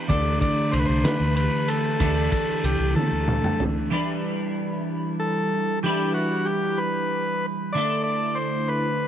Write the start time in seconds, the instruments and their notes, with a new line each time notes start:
0.08 fingered electric bass D2, clean electric guitar D3 E3 A3 D4 A4, transistor combo organ D5, kick, ride
0.41 transistor combo organ D5, kick, ride
0.72 fingered electric bass C2, transistor combo organ C5, ride
0.79 transistor combo organ B4
0.85 fingered electric bass C2, transistor combo organ C5
1.04 fingered electric bass D3, transistor combo organ B4, snare, ride
1.20 fingered electric bass D2
1.36 transistor combo organ B4, ride
1.68 transistor combo organ A4, ride
1.99 fingered electric bass D2, clean electric guitar D3 E3 A3 D4 A4, kick, ride
2.32 transistor combo organ A4, kick, ride
2.64 fingered electric bass C2, transistor combo organ G4, ride
2.79 fingered electric bass C2
2.95 fingered electric bass D3, transistor combo organ A4, high tom
3.11 fingered electric bass D2
3.28 mid tom
3.44 mid tom
3.60 floor tom
3.90 clean electric guitar E3 G3 D4 E4 B4
5.20 transistor combo organ A4
5.83 clean electric guitar E3 G3 D4 E4 B4, transistor combo organ G4
6.14 transistor combo organ F#4
6.45 transistor combo organ G4
6.78 transistor combo organ B4
7.73 clean electric guitar D3 A3 D4 E4, transistor combo organ D5
7.77 clean electric guitar A4
8.04 transistor combo organ D5
8.35 transistor combo organ C5
8.68 transistor combo organ B4